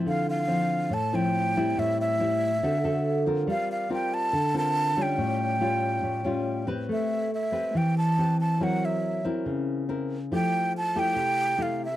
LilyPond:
<<
  \new Staff \with { instrumentName = "Flute" } { \time 4/4 \key d \minor \tempo 4 = 140 f''8 f''4. a''8 g''4. | e''8 e''2. r8 | f''8 f''8 g''8 a''4 a''4 g''8~ | g''2.~ g''8 r8 |
\key a \minor e''4 e''4 g''8 a''4 a''8 | fis''8 e''4 r2 r8 | g''4 a''8 g''4. f''8 e''8 | }
  \new Staff \with { instrumentName = "Nylon-string guitar" } { \time 4/4 \key d \minor << { <eis bis e'>4 <f c'>4 r8 <f c' e'>4 <g c' e'>8~ | <g c' e'>4 <g c' e'>8 r8 <c' fis' a'>8 <c' fis' a'>4 <c' f' bes'>8~ | <c' f' bes'>4 <c' f' bes'>4 r8 <c' f' bes'>4 <g cis' f'>8~ | <g cis' f'>4 <g cis' eis'>4. <g cis' eis'>4 <bis g' b'>8~ |
\key a \minor <bis g' b'>4 r8 <c' g' b'>4. <c' g' b'>4 | <bis e' ais'>4. <bis e' ais'>4. <bis e' ais'>8 r8 | <a e' g'>4 r8 <a e' g'>4. <a e' g'>8 r8 | } \\ { d2 a,2 | a,2 d2 | g2 d2 | a,2 a,2 |
a2 e2 | fis2 cis2 | f2 c2 | } >> }
>>